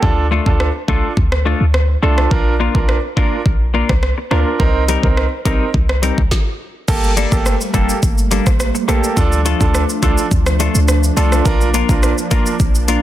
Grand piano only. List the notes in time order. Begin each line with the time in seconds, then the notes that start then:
0.02 D4 F4 A4
0.46 D4 F4 A4
0.88 D4 F4 A4
2.02 D4 F4 A4
2.31 D4 F4 A#4
2.75 D4 F4 A#4
3.17 D4 F4 A#4
4.31 D4 F4 A#4
4.59 C4 D#4 A#4
5.03 C4 D#4 A#4
5.45 C4 D#4 A#4
6.88 A#3 G4 A4
7.32 A#3 G4 A4
7.74 A#3 G4 A4
8.88 A#3 G4 A4
9.17 D4 F4 A4
9.60 D4 F4 A4
10.02 D4 F4 A4
11.17 D4 F4 A4
11.45 D4 F4 A#4
11.89 D4 F4 A#4
12.31 D4 F4 A#4